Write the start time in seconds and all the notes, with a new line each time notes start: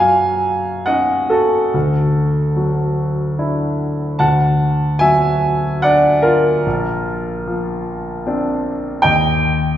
Already playing: F#2 F#5 G#5 A#5
0.00 F#3 F5
0.86 C#4 D#4 D#5 F#5
1.30 F#4 A4
1.74 D2
2.56 F#3
3.39 D4 E4
4.19 D2 F#5 A5
4.99 F#3 E5 G#5
5.82 D4 D5 F#5
6.22 F4 A#4
6.66 A#1
7.47 F3
8.26 C4 D4
9.02 D#2 D#5 G5